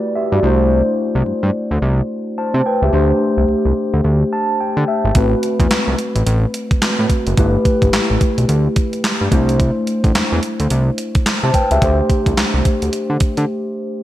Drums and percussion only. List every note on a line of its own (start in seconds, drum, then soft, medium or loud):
5.15 kick loud
5.15 closed hi-hat medium
5.43 closed hi-hat medium
5.60 kick medium
5.60 closed hi-hat medium
5.71 snare loud
5.71 clap medium
5.71 closed hi-hat medium
5.99 closed hi-hat medium
6.16 closed hi-hat medium
6.27 closed hi-hat medium
6.54 closed hi-hat medium
6.71 kick medium
6.71 closed hi-hat soft
6.82 snare loud
6.82 clap loud
6.82 closed hi-hat medium
7.09 kick medium
7.09 closed hi-hat medium
7.27 closed hi-hat medium
7.37 kick loud
7.37 closed hi-hat medium
7.65 kick medium
7.65 closed hi-hat medium
7.82 kick medium
7.82 closed hi-hat soft
7.93 snare loud
7.93 clap medium
7.93 closed hi-hat medium
8.21 kick medium
8.21 closed hi-hat medium
8.38 closed hi-hat medium
8.49 closed hi-hat medium
8.76 kick loud
8.76 closed hi-hat medium
8.93 closed hi-hat soft
9.04 snare loud
9.04 clap loud
9.04 closed hi-hat medium
9.32 kick medium
9.32 closed hi-hat medium
9.49 closed hi-hat medium
9.60 kick loud
9.60 closed hi-hat medium
9.87 closed hi-hat medium
10.04 kick medium
10.04 closed hi-hat soft
10.15 snare loud
10.15 clap medium
10.15 closed hi-hat medium
10.43 closed hi-hat medium
10.60 closed hi-hat medium
10.70 closed hi-hat medium
10.98 closed hi-hat medium
11.15 kick loud
11.15 closed hi-hat soft
11.26 snare loud
11.26 clap loud
11.26 closed hi-hat medium
11.54 kick medium
11.54 closed hi-hat medium
11.71 closed hi-hat medium
11.82 kick loud
11.82 closed hi-hat medium
12.10 kick medium
12.10 closed hi-hat medium
12.26 kick medium
12.26 closed hi-hat soft
12.37 snare loud
12.37 clap medium
12.37 closed hi-hat medium
12.65 kick medium
12.65 closed hi-hat medium
12.82 closed hi-hat medium
12.93 closed hi-hat medium
13.20 kick loud
13.20 closed hi-hat medium
13.37 closed hi-hat soft